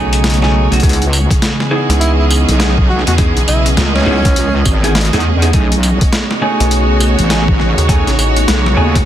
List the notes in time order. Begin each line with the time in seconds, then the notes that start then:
Already playing: B1 C#3 A3 B3 C#4 D#4 F#4 G#4 C#5 D#5
0.13 closed hi-hat
0.24 snare, closed hi-hat
0.30 closed hi-hat
0.34 closed hi-hat
0.42 A3 C#4 D#4 G#4, snare
0.71 B1 A3 C#4 D#4 F#4, closed hi-hat
0.80 C#2 E3 B3 C#4 D#4 G#4, kick, closed hi-hat
0.83 E4, closed hi-hat
0.89 closed hi-hat
0.93 closed hi-hat
1.02 closed hi-hat
1.13 tambourine
1.20 G#4
1.31 kick, closed hi-hat
1.42 snare, closed hi-hat
1.60 snare
1.67 D#4 D#5
1.71 B3 E4 G#4
1.89 C#2, snare, closed hi-hat
2.00 E4, closed hi-hat
2.19 E4
2.30 tambourine
2.48 B1, closed hi-hat
2.59 B3 D#4 E4 G#4, snare, closed hi-hat
2.78 kick
2.89 F#4, snare
2.99 snare
3.07 E2 F#4, snare, closed hi-hat
3.18 B3 C#4 D#4 E4 G#4, kick, closed hi-hat
3.37 B1, closed hi-hat
3.48 B1 E4, tambourine
3.66 closed hi-hat
3.77 C#2, snare, closed hi-hat
3.95 C#4, snare
3.98 snare
4.01 snare
4.04 C#2 D#4, snare
4.06 B3 E4 G#4, snare
4.11 snare
4.16 snare
4.21 snare
4.25 kick, snare, closed hi-hat
4.36 closed hi-hat
4.65 G#1, kick, tambourine
4.84 B3 D#4 E4 G#4, closed hi-hat
4.95 snare, closed hi-hat
5.01 closed hi-hat
5.05 closed hi-hat
5.13 E2 B3 D#4 E4 G#4, snare, closed hi-hat
5.20 closed hi-hat
5.42 B3 D#4 E4 G#4, closed hi-hat
5.53 B1 C#3 A3 B3 C#4 D#4 G#4, kick, closed hi-hat
5.72 closed hi-hat
5.79 F#4
5.83 tambourine
5.90 C#5
6.01 kick, closed hi-hat
6.12 snare, closed hi-hat
6.31 snare
6.42 A3 C#4 D#4 G#4
6.60 B1, closed hi-hat
6.71 closed hi-hat
7.00 tambourine
7.19 A1, closed hi-hat
7.30 A3 C#4 D#4 G#4, snare, closed hi-hat
7.48 kick
7.60 snare
7.78 D#2, closed hi-hat
7.89 A3 C#4 D#4 G#4, kick, closed hi-hat
8.07 A1, snare, closed hi-hat
8.18 A1, tambourine
8.36 closed hi-hat
8.48 B1, snare, closed hi-hat
8.66 snare
8.77 D#2 A3 C#4 D#4 G#4
8.95 kick, snare, closed hi-hat